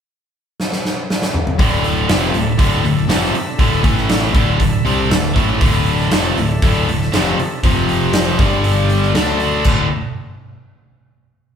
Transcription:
0.60 snare medium
0.72 snare medium
0.85 snare medium
1.10 snare medium
1.22 snare medium
1.34 mid tom medium
1.47 mid tom medium
1.58 2.05 D1 loud
1.58 2.08 D2 medium
1.58 2.08 A2 loud
1.58 2.09 D3 loud
1.58 3.83 D4 medium
1.58 4.33 A4 medium
1.58 3.83 E5 medium
1.58 kick loud
1.58 open hi-hat medium
1.84 open hi-hat medium
2.09 2.32 F1 medium
2.09 2.33 F2 medium
2.09 2.34 C3 medium
2.09 2.34 F3 loud
2.09 snare loud
2.09 open hi-hat medium
2.34 2.58 D1 medium
2.34 2.54 D2 medium
2.34 2.54 A2 medium
2.34 open hi-hat medium
2.58 2.82 D1 medium
2.58 2.83 D2 medium
2.58 2.82 A2 loud
2.58 2.83 D3 loud
2.58 kick loud
2.58 open hi-hat medium
2.84 3.08 D1 medium
2.84 3.04 D2 medium
2.84 3.04 A2 medium
2.84 open hi-hat medium
3.08 3.32 F1 medium
3.08 3.33 F2 medium
3.08 3.33 C3 medium
3.08 3.33 F3 loud
3.08 snare loud
3.08 open hi-hat medium
3.34 muted overdriven electric guitar stroke medium
3.34 muted picked electric bass stroke soft
3.34 muted distorted electric guitar stroke medium
3.34 open hi-hat medium
3.59 3.83 D1 loud
3.59 3.83 D2 medium
3.59 3.82 A2 loud
3.59 3.84 D3 loud
3.59 kick loud
3.59 open hi-hat medium
3.83 4.31 A1 loud
3.83 4.33 A2 medium
3.83 4.34 E3 loud
3.83 4.34 A3 medium
3.83 4.34 A3 loud
3.83 4.34 E4 medium
3.83 kick loud
3.83 open hi-hat medium
3.97 snare soft
4.09 snare loud
4.09 open hi-hat medium
4.34 4.58 D1 loud
4.34 4.58 D2 loud
4.34 4.58 A2 loud
4.34 4.59 D3 loud
4.34 7.60 D4 medium
4.34 7.60 A4 medium
4.34 7.60 E5 medium
4.34 kick loud
4.34 open hi-hat medium
4.59 4.84 D1 medium
4.59 4.80 D2 medium
4.59 4.80 A2 medium
4.59 kick medium
4.59 open hi-hat medium
4.85 5.09 C2 loud
4.85 5.10 C3 medium
4.85 5.10 G3 medium
4.85 5.10 C4 loud
4.85 open hi-hat medium
5.09 5.33 D1 medium
5.09 5.31 D2 medium
5.09 5.31 A2 medium
5.09 snare loud
5.09 open hi-hat medium
5.35 5.59 A1 loud
5.35 5.60 A2 loud
5.35 5.60 E3 loud
5.35 5.60 A3 loud
5.35 kick medium
5.35 open hi-hat medium
5.61 6.08 D1 loud
5.61 6.11 D2 medium
5.61 6.11 A2 loud
5.61 6.11 D3 medium
5.61 kick loud
5.61 open hi-hat medium
5.86 open hi-hat medium
6.00 snare soft
6.11 6.35 F1 loud
6.11 6.36 F2 medium
6.11 6.36 C3 loud
6.11 6.37 F3 medium
6.11 snare loud
6.11 open hi-hat medium
6.37 6.60 D1 medium
6.37 6.57 D2 medium
6.37 6.58 A2 medium
6.37 open hi-hat medium
6.62 6.86 D1 medium
6.62 6.87 D2 medium
6.62 6.88 A2 loud
6.62 6.88 D3 loud
6.62 kick loud
6.62 open hi-hat medium
6.88 7.11 D1 medium
6.88 7.08 D2 medium
6.88 7.09 A2 medium
6.88 open hi-hat medium
7.01 snare soft
7.13 7.36 F1 loud
7.13 7.38 F2 medium
7.13 7.38 C3 loud
7.13 7.39 F3 loud
7.13 snare loud
7.13 open hi-hat medium
7.38 muted distorted electric guitar stroke medium
7.38 muted overdriven electric guitar stroke medium
7.38 muted picked electric bass stroke soft
7.38 open hi-hat medium
7.63 8.35 F1 medium
7.63 8.38 F2 loud
7.63 8.39 C3 medium
7.63 8.38 F3 medium
7.63 8.39 F3 loud
7.63 8.38 C4 medium
7.63 8.38 G4 medium
7.63 kick loud
7.63 open hi-hat medium
7.89 open hi-hat medium
8.13 snare loud
8.13 open hi-hat medium
8.39 9.11 G1 medium
8.39 9.14 G2 medium
8.39 9.13 D3 medium
8.39 9.15 G3 loud
8.39 9.15 G3 medium
8.39 9.66 D4 medium
8.39 9.65 A4 medium
8.39 kick loud
8.39 open hi-hat medium
8.64 open hi-hat medium
8.89 open hi-hat medium
9.02 snare soft
9.14 9.61 D2 medium
9.14 9.64 D3 medium
9.14 9.65 A3 medium
9.14 9.65 D4 loud
9.14 9.65 E5 medium
9.14 snare loud
9.14 open hi-hat medium
9.40 open hi-hat medium
9.64 9.89 D1 medium
9.64 9.86 D2 medium
9.64 9.86 A2 loud
9.64 9.86 D3 loud
9.64 9.90 D4 medium
9.64 9.89 A4 medium
9.64 9.89 E5 medium
9.64 kick loud
9.64 crash medium

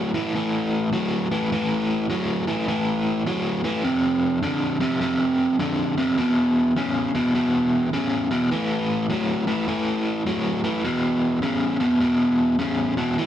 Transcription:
0.00 0.10 A2 medium
0.00 0.10 F#3 medium
0.14 0.33 A2 medium
0.14 0.33 E3 medium
0.34 0.89 A2 medium
0.34 0.89 E3 medium
0.93 1.27 A2 medium
0.93 1.27 F#3 medium
1.31 1.50 A2 medium
1.31 1.50 E3 medium
1.52 2.06 A2 medium
1.52 2.06 E3 medium
2.10 2.44 A2 medium
2.10 2.44 F#3 medium
2.47 2.66 A2 medium
2.47 2.66 E3 medium
2.68 3.22 A2 medium
2.68 3.22 E3 medium
3.26 3.61 A2 medium
3.26 3.61 F#3 medium
3.64 3.83 A2 medium
3.64 3.83 E3 medium
3.84 4.39 F2 medium
3.84 4.39 C3 medium
4.43 4.77 F2 medium
4.43 4.77 D3 medium
4.80 4.99 F2 medium
4.80 4.99 C3 medium
5.01 5.55 F2 medium
5.01 5.56 C3 medium
5.59 5.94 F2 medium
5.59 5.94 D3 medium
5.97 6.16 F2 medium
5.97 6.16 C3 medium
6.18 6.72 E2 medium
6.18 6.72 B2 medium
6.76 7.11 E2 medium
6.76 7.11 C#3 medium
7.15 7.33 E2 medium
7.15 7.33 B2 medium
7.35 7.89 E2 medium
7.35 7.89 B2 medium
7.93 8.27 E2 medium
7.93 8.27 C#3 loud
8.31 8.49 E2 medium
8.31 8.49 B2 medium
8.51 9.06 A2 medium
8.51 9.06 E3 loud
9.10 9.44 A2 medium
9.10 9.44 F#3 medium
9.47 9.66 A2 medium
9.47 9.66 E3 medium
9.68 10.22 A2 medium
9.68 10.22 E3 medium
10.26 10.60 A2 medium
10.26 10.61 F#3 medium
10.64 10.82 A2 medium
10.64 10.83 E3 medium
10.84 11.39 E2 medium
10.84 11.39 B2 medium
11.42 11.76 E2 medium
11.42 11.77 C#3 medium
11.80 11.99 E2 medium
11.80 11.99 B2 medium
12.00 12.55 E2 medium
12.00 12.55 B2 medium
12.59 12.93 E2 medium
12.59 12.93 C#3 medium
12.97 13.15 E2 medium
12.97 13.16 B2 medium
13.18 13.26 A2 medium
13.18 13.26 E3 medium

